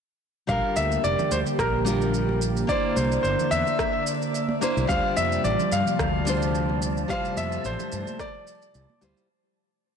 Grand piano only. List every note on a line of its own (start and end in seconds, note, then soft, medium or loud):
0.49 0.77 F5 loud
0.76 1.05 E5 medium
1.04 1.32 D5 medium
1.32 1.38 C5 medium
1.60 2.38 A#4 medium
2.69 2.95 D5 medium
2.96 3.21 C5 medium
3.23 3.49 C5 medium
3.51 4.03 E5 loud
4.89 5.15 F5 loud
5.17 5.45 E5 medium
5.44 5.73 D5 medium
5.72 6.78 F5 loud
7.10 7.35 F5 loud
7.37 7.66 E5 medium
7.66 8.16 C5 medium
8.20 8.99 D5 medium